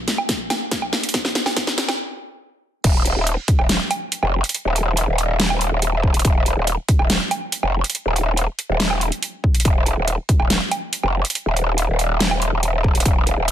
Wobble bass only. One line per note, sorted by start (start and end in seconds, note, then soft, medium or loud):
2.84 3.15 D#1 loud
3.16 3.36 D#1 medium
3.59 3.78 D#1 medium
4.23 4.42 F1 medium
4.65 5.06 D#1 medium
5.08 5.70 D#1 medium
5.72 6.12 D#1 loud
6.14 6.23 D#1 medium
6.25 6.55 D#1 loud
6.57 6.76 D#1 loud
6.99 7.19 D#1 loud
7.63 7.83 F1 loud
8.06 8.46 D#1 medium
8.69 9.10 D#1 loud
9.65 9.95 D#1 loud
9.97 10.17 D#1 medium
10.40 10.59 D#1 loud
11.03 11.23 F1 loud
11.46 11.87 D#1 medium
11.89 12.51 D#1 loud
12.52 12.93 D#1 loud
12.95 13.04 D#1 medium
13.06 13.36 D#1 loud
13.38 13.51 D#1 medium